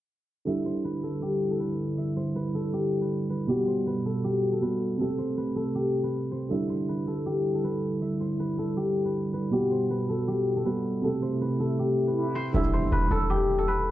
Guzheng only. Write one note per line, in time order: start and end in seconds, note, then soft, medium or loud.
0.46 1.97 E5 medium
0.66 0.91 C5 medium
0.85 1.59 B4 medium
1.03 1.50 A4 medium
1.22 2.73 G4 medium
1.51 2.54 A4 medium
1.60 2.23 B4 medium
1.98 3.70 E5 medium
2.17 2.42 C5 medium
2.36 3.01 B4 medium
2.54 4.05 A4 medium
2.73 3.48 G4 medium
3.01 3.29 B4 medium
3.30 3.74 B4 medium
3.49 4.24 G4 medium
3.68 3.93 C5 medium
3.87 4.61 B4 medium
4.05 4.52 A4 medium
4.24 5.75 G4 medium
4.52 4.99 A4 medium
4.62 5.24 B4 medium
5.00 5.55 A4 medium
5.18 5.43 C5 medium
5.37 6.03 B4 medium
5.56 7.07 A4 medium
5.75 7.26 G4 medium
6.03 6.37 B4 medium
6.31 6.69 C5 medium
6.50 8.01 E5 medium
6.70 6.95 C5 medium
6.89 7.64 B4 medium
7.07 7.54 A4 medium
7.26 8.76 G4 medium
7.55 8.58 A4 medium
7.64 8.27 B4 medium
8.02 9.74 E5 medium
8.21 8.45 C5 medium
8.39 9.05 B4 medium
8.58 10.08 A4 medium
8.77 9.52 G4 medium
9.05 9.33 B4 medium
9.33 9.77 B4 medium
9.52 10.27 G4 medium
9.71 9.96 C5 medium
9.90 10.65 B4 medium
10.09 10.56 A4 medium
10.28 11.79 G4 medium
10.56 11.03 A4 medium
10.66 11.28 B4 medium
11.03 11.59 A4 medium
11.22 11.47 C5 medium
11.41 12.07 B4 medium
11.60 13.10 A4 medium
11.79 13.30 G4 medium
12.07 12.41 B4 medium
12.35 12.73 C5 medium
12.54 13.91 E5 medium
12.73 12.98 C5 medium
12.92 13.67 B4 medium
13.11 13.58 A4 medium
13.30 13.91 G4 medium
13.58 13.91 A4 medium
13.68 13.91 B4 medium